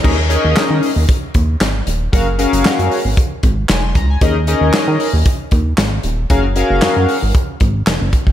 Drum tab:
CC |x---------------|----------------|----------------|----------------|
HH |--x-x-o-x-x-x-x-|x-xxxxo-x-x-x-x-|x-x-x-o-x-x-x-x-|x-x-x-o-x-x-x-x-|
CP |----x-------x---|----x-------x---|----x-------x---|----x-------x---|
SD |----o-------o---|----o-------o---|----o-------o---|----o-------o---|
BD |o-------o-o-----|o-------o-o---o-|o-------o-o-----|o-------o-o---oo|